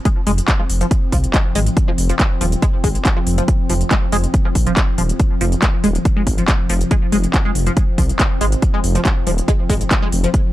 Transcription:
Already playing: ambient pad F3 C4
0.05 synth arpeggio sound G#3, kick, closed hi-hat
0.27 detuned saw bass F1, synth arpeggio sound G#3, open hi-hat
0.38 closed hi-hat
0.48 kick, clap, closed hi-hat
0.59 synth arpeggio sound F3
0.70 detuned saw bass F1, open hi-hat
0.81 synth arpeggio sound F3, closed hi-hat
0.91 kick, closed hi-hat
1.12 detuned saw bass C2, synth arpeggio sound F3, kick, open hi-hat
1.24 closed hi-hat
1.34 synth arpeggio sound G#3, kick, clap, closed hi-hat
1.55 detuned saw bass G#1, synth arpeggio sound G#3, open hi-hat
1.67 closed hi-hat
1.77 kick, closed hi-hat
1.88 synth arpeggio sound F3
1.98 detuned saw bass F1, open hi-hat
2.09 synth arpeggio sound F3, closed hi-hat
2.20 kick, clap, closed hi-hat
2.41 detuned saw bass D#1, synth arpeggio sound F3, open hi-hat
2.52 closed hi-hat
2.62 synth arpeggio sound G#3, kick, closed hi-hat
2.84 detuned saw bass G#1, synth arpeggio sound G#3, kick, open hi-hat
2.95 closed hi-hat
3.05 kick, clap, closed hi-hat
3.17 synth arpeggio sound F3
3.27 detuned saw bass F1, open hi-hat
3.38 synth arpeggio sound F3, closed hi-hat
3.48 kick, closed hi-hat
3.70 detuned saw bass F1, synth arpeggio sound F3, open hi-hat
3.81 closed hi-hat
3.91 synth arpeggio sound G#3, kick, clap, closed hi-hat
4.12 detuned saw bass F1, synth arpeggio sound G#3, open hi-hat
4.24 closed hi-hat
4.34 kick, closed hi-hat
4.45 synth arpeggio sound F3
4.55 detuned saw bass A#1, kick, open hi-hat
4.67 synth arpeggio sound F3, closed hi-hat
4.77 kick, clap, closed hi-hat
4.98 detuned saw bass D#1, synth arpeggio sound F3, open hi-hat
5.09 closed hi-hat
5.19 kick, closed hi-hat
5.41 detuned saw bass F1, synth arpeggio sound F3, open hi-hat
5.52 closed hi-hat
5.62 synth arpeggio sound G#3, kick, clap, closed hi-hat
5.84 detuned saw bass D#1, synth arpeggio sound G#3, open hi-hat
5.95 closed hi-hat
6.05 kick, closed hi-hat
6.17 synth arpeggio sound G#3
6.27 detuned saw bass G#1, kick, open hi-hat
6.38 synth arpeggio sound F3, closed hi-hat
6.48 kick, clap, closed hi-hat
6.70 detuned saw bass F1, synth arpeggio sound F3, open hi-hat
6.81 closed hi-hat
6.91 synth arpeggio sound G#3, kick, closed hi-hat
7.12 detuned saw bass F1, synth arpeggio sound G#3, open hi-hat
7.24 closed hi-hat
7.34 kick, clap, closed hi-hat
7.45 synth arpeggio sound G#3
7.55 detuned saw bass F1, open hi-hat
7.67 synth arpeggio sound F3, closed hi-hat
7.77 kick, closed hi-hat
7.98 detuned saw bass C2, synth arpeggio sound F3, kick, open hi-hat
8.09 closed hi-hat
8.20 synth arpeggio sound G#3, kick, clap, closed hi-hat
8.41 detuned saw bass G#1, synth arpeggio sound G#3, open hi-hat
8.52 closed hi-hat
8.62 kick, closed hi-hat
8.74 synth arpeggio sound G#3
8.84 detuned saw bass F1, open hi-hat
8.95 synth arpeggio sound F3, closed hi-hat
9.05 kick, clap, closed hi-hat
9.27 detuned saw bass D#1, synth arpeggio sound F3, open hi-hat
9.38 closed hi-hat
9.48 synth arpeggio sound G#3, kick, closed hi-hat
9.70 detuned saw bass G#1, synth arpeggio sound G#3, kick, open hi-hat
9.81 closed hi-hat
9.91 kick, clap, closed hi-hat
10.02 synth arpeggio sound G#3
10.12 detuned saw bass F1, open hi-hat
10.24 synth arpeggio sound F3, closed hi-hat
10.34 kick, closed hi-hat

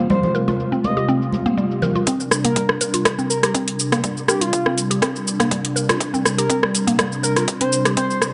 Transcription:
Already playing: analog synth pad C3 G3 F4
0.10 synth arpeggio sound G3, analog synth lead C5, high conga, low conga, cabasa
0.23 analog synth lead C5, low conga, cabasa
0.35 synth arpeggio sound A#4, cabasa
0.48 synth arpeggio sound F4, high conga, cabasa
0.60 cabasa
0.72 synth arpeggio sound C4, cabasa
0.84 analog synth lead D#5, high conga, cabasa
0.97 synth arpeggio sound G4, analog synth lead D#5, cabasa
1.09 synth arpeggio sound C4, cabasa
1.22 cabasa
1.32 high conga, cabasa
1.46 synth arpeggio sound A#3, cabasa
1.58 synth arpeggio sound G3, cabasa
1.71 cabasa
1.82 synth arpeggio sound A#4, low conga, cabasa
1.96 synth arpeggio sound F4, cabasa
2.07 analog synth pad C3 G3 D4, synth arpeggio sound C4, kick, closed hi-hat, cabasa
2.20 cabasa
2.31 cross-stick, cabasa
2.44 synth arpeggio sound A#3, analog synth lead A#4, closed hi-hat, cabasa
2.56 synth arpeggio sound G3, kick, closed hi-hat, cabasa
2.69 cross-stick
2.81 synth arpeggio sound A#4, closed hi-hat, cabasa
2.94 synth arpeggio sound F4, closed hi-hat, cabasa
3.05 kick, cross-stick, closed hi-hat, cabasa
3.19 synth arpeggio sound C4, cabasa
3.30 analog synth lead A#4, cabasa
3.43 synth arpeggio sound G4, analog synth lead A#4, cross-stick, closed hi-hat, cabasa
3.55 synth arpeggio sound C4, kick, closed hi-hat, cabasa
3.68 closed hi-hat
3.80 cabasa
3.92 synth arpeggio sound A#3, cross-stick, closed hi-hat, cabasa
4.04 synth arpeggio sound G3, kick, closed hi-hat, cabasa
4.17 cabasa
4.28 analog synth lead G4, synth arpeggio sound A#4, cross-stick, cabasa
4.41 analog synth lead F4, synth arpeggio sound F4, closed hi-hat, cabasa
4.53 kick, closed hi-hat, cabasa
4.66 synth arpeggio sound C4, cross-stick
4.78 closed hi-hat, cabasa
4.91 synth arpeggio sound G4, closed hi-hat, cabasa
5.02 synth arpeggio sound C4, kick, cross-stick, closed hi-hat, cabasa
5.16 cabasa
5.27 cabasa
5.40 synth arpeggio sound A#3, cross-stick, closed hi-hat, cabasa
5.51 synth arpeggio sound G3, kick, closed hi-hat, cabasa
5.65 closed hi-hat
5.76 synth arpeggio sound A#4, cabasa
5.89 synth arpeggio sound F4, cross-stick, closed hi-hat, cabasa
6.00 kick, closed hi-hat, cabasa
6.14 synth arpeggio sound C4, cabasa
6.26 cross-stick, cabasa
6.38 synth arpeggio sound G4, analog synth lead A#4, closed hi-hat, cabasa
6.50 synth arpeggio sound C4, kick, closed hi-hat, cabasa
6.63 cross-stick
6.75 closed hi-hat, cabasa
6.87 synth arpeggio sound A#3, closed hi-hat, cabasa
6.99 synth arpeggio sound G3, kick, cross-stick, closed hi-hat, cabasa
7.12 cabasa
7.23 synth arpeggio sound A#4, analog synth lead A#4, cabasa
7.36 synth arpeggio sound F4, analog synth lead A#4, cross-stick, closed hi-hat, cabasa
7.48 kick, closed hi-hat, cabasa
7.61 synth arpeggio sound C4, analog synth lead C5, closed hi-hat
7.73 cabasa
7.85 synth arpeggio sound G4, cross-stick, closed hi-hat, cabasa
7.97 synth arpeggio sound C4, analog synth lead C5, kick, closed hi-hat, cabasa
8.10 analog synth lead C5, cabasa
8.22 cross-stick, cabasa

